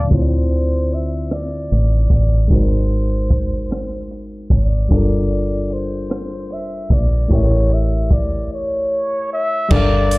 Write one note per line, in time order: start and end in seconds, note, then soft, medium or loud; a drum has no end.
0.00 0.17 D5 medium
0.00 0.13 F5 medium
0.00 0.13 A5 medium
0.07 2.45 D3 medium
0.07 2.46 C4 soft
0.07 kick medium
0.07 crash medium
0.12 1.67 D2 medium
0.12 2.47 E4 soft
0.12 2.48 F4 soft
0.12 0.96 C5 medium
0.12 0.19 C#5 soft
0.22 2.52 D5 medium
0.51 closed hi-hat soft
0.90 1.34 E5 medium
0.90 closed hi-hat soft
1.30 2.12 D5 loud
1.30 cross-stick medium
1.30 closed hi-hat medium
1.71 2.07 A1 medium
1.71 closed hi-hat soft
2.10 2.47 A1 medium
2.10 2.55 D5 medium
2.10 kick medium
2.10 closed hi-hat medium
2.48 4.47 G#1 loud
2.48 4.85 G#3 medium
2.48 4.86 D#4 soft
2.48 4.87 F#4 soft
2.48 kick medium
2.48 closed hi-hat medium
2.53 4.88 A#4 soft
2.53 4.12 C5 medium
2.53 4.89 C5 medium
2.91 closed hi-hat soft
3.30 kick medium
3.30 closed hi-hat soft
3.71 cross-stick medium
3.71 closed hi-hat medium
4.11 closed hi-hat soft
4.50 4.87 G#1 medium
4.50 kick medium
4.50 closed hi-hat medium
4.54 5.74 D5 medium
4.89 6.52 G1 loud
4.89 7.26 G3 medium
4.89 7.26 D4 soft
4.89 7.27 F4 medium
4.89 kick medium
4.89 closed hi-hat soft
4.94 7.28 A4 medium
4.94 7.29 A#4 medium
5.30 closed hi-hat soft
5.70 6.54 C5 medium
5.70 closed hi-hat soft
6.10 cross-stick loud
6.10 closed hi-hat medium
6.50 6.87 F1 medium
6.50 6.94 E5 medium
6.50 closed hi-hat soft
6.90 7.27 A#1 medium
6.90 7.34 D5 medium
6.90 kick medium
6.90 closed hi-hat medium
7.28 8.47 A1 loud
7.28 9.65 A3 medium
7.28 9.66 E4 medium
7.28 9.67 G4 medium
7.28 kick medium
7.28 closed hi-hat medium
7.33 9.68 A#4 medium
7.33 7.75 C#5 medium
7.33 9.69 E5 medium
7.70 8.13 E5 medium
7.70 closed hi-hat soft
8.10 8.51 D5 medium
8.10 kick medium
8.10 closed hi-hat soft
8.54 9.28 C#5 medium
9.33 9.72 E5 loud
9.69 10.18 G1 loud
9.69 10.18 G3 medium
9.69 10.18 D4 medium
9.69 10.18 A4 medium
9.69 10.18 D5 loud
9.69 kick loud
9.69 crash medium
9.74 10.18 A#4 medium
9.74 10.18 F5 medium
10.11 closed hi-hat medium